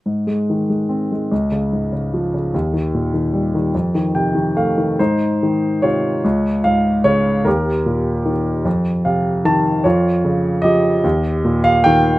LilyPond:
<<
  \new Staff \with { instrumentName = "Grand piano" } { \time 6/8 \key aes \major \tempo 4. = 50 << { r2. | r2 g''8 f''8 | c''4 des''4 f''8 des''8 | bes'4 r4 f''8 a''8 |
des''4 ees''4~ ees''16 f''16 g''8 | } \\ { r2. | r2. | ees'4 f'4. r8 | g'4. r4. |
f'4 g'4. r8 | } >> }
  \new Staff \with { instrumentName = "Grand piano" } { \clef bass \time 6/8 \key aes \major aes,16 aes16 ees16 aes16 c'16 aes16 des,16 des16 aes,16 des16 f16 des16 | ees,16 ees16 bes,16 ees16 g16 ees16 f,16 ees16 c16 ees16 a16 ees16 | aes,8 ees8 c8 des,8 aes,8 des8 | ees,8 bes,8 ees8 f,8 c8 ees8 |
f,8 des8 f8 ees,8 bes,8 ees8 | }
>>